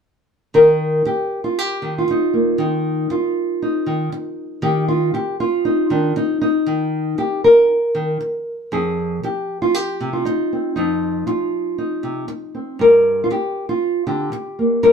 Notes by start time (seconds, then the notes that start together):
0.54 D#3 A#4
1.05 G4, muted nylon-string guitar stroke
1.44 F4
1.59 G4
1.82 D#3
1.98 F4
2.08 D#4, muted nylon-string guitar stroke
2.34 A#3
2.58 D#3 D#4
3.10 F4, muted nylon-string guitar stroke
3.62 D#4
3.86 D#3
4.12 muted nylon-string guitar stroke
4.62 D#3 G4
4.88 F4
5.14 G4, muted nylon-string guitar stroke
5.40 F4
5.65 D#4
5.90 D#3 D4
6.16 D#4, muted nylon-string guitar stroke
6.42 D#4
6.66 D#3
7.18 G4, muted nylon-string guitar stroke
7.44 A#4
7.95 D#3
8.21 muted nylon-string guitar stroke
8.72 F2 G#4
9.23 G4, muted nylon-string guitar stroke
9.62 F4
9.74 G4
10.01 C3
10.13 F4
10.25 D#4, muted nylon-string guitar stroke
10.53 C4
10.76 F2 D#4
11.27 F4, muted nylon-string guitar stroke
11.78 D#4
12.03 C3
12.28 muted nylon-string guitar stroke
12.55 C4
12.79 G2 A#4
13.24 F4
13.30 G4, muted nylon-string guitar stroke
13.69 F4
14.07 D3 G4
14.32 muted nylon-string guitar stroke
14.59 A#3
14.83 G2 A#4